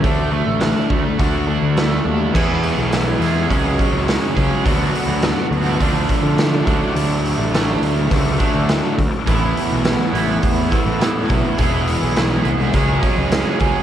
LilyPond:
<<
  \new Staff \with { instrumentName = "Overdriven electric guitar" } { \time 4/4 \key d \lydian \tempo 4 = 104 a8 a8 d'8 a8 fis'8 d'8 a8 d'8 | <b e' gis'>4. <b e' gis'>8 <fis gis cis' gis'>4. <fis gis cis' gis'>8 | <b d' fis'>4. <b d' fis'>8 <f a d'>4. <fis a d'>8~ | <fis a d'>4 <fis a d'>4. <fis a d'>4 r8 |
<e b e'>4. <e b e'>4. <e b e'>4 | <e b e' gis'>4. <e b e' gis'>8 <fis gis cis' gis'>4. <fis gis cis' gis'>8 | }
  \new Staff \with { instrumentName = "Distorted electric guitar" } { \time 4/4 \key d \lydian <d a d'>8 <d a>8 <d a>8 <d a>8 <d a d'>8 <d a>8 <d a>8 <d a>8 | <e gis b e' gis'>2 <cis fis cis' fis' gis'>2 | <d fis b fis'>2 <d a d' f'>4. <d a d' fis'>8~ | <d a d' fis'>2 <d a d' fis'>8 <d a d' fis'>4 r8 |
<a b e' a'>2~ <a b e' a'>8 <a b e' a'>8 <a b e' a'>4 | <e gis b e' gis'>2 <cis fis cis' fis' gis'>2 | }
  \new Staff \with { instrumentName = "Picked electric bass" } { \clef bass \time 4/4 \key d \lydian d,8. a,,8 r16 d,16 r16 d,8. d,8. dis,8 | e,8. b,,8. e,8 cis,8 r16 cis,8 r16 cis,16 r16 | d,8 r16 d,8 r16 d,8 d,8 r16 d8. d,16 r16 | d,8. a,,8. d,8 cis,8 r16 d,8 r16 d,16 r16 |
a,,8 r16 b,,8 r16 a,,8 e,8 r16 a,8. b,,16 r16 | e,,8. b,,8. c,8 cis,8 r16 cis,8 r16 cis,16 r16 | }
  \new DrumStaff \with { instrumentName = "Drums" } \drummode { \time 4/4 <hho bd>4 <hho sn>8 bd8 <hho bd>4 <hho sn>4 | <cymc bd>8 hho8 <hho sn>8 <hho sn>8 <hho bd>8 <hho bd>8 <hho sn>8 <hho bd>8 | <hho bd>8 hho8 <hho sn>8 hho8 <hho bd>8 <hho bd>8 <hho sn>8 <hho bd>8 | hho8 hho8 <hho sn>8 hho8 <hho bd>8 <hho bd>8 <hho sn>8 <hho bd>8 |
<hho bd>8 hho8 <hho sn>8 hho8 <hho bd>8 <hho bd>8 <hho sn>8 <hho bd>8 | <hho bd>8 hho8 <hho sn>8 hho8 <hho bd>8 <hho bd>8 <hho sn>8 <hho bd>8 | }
>>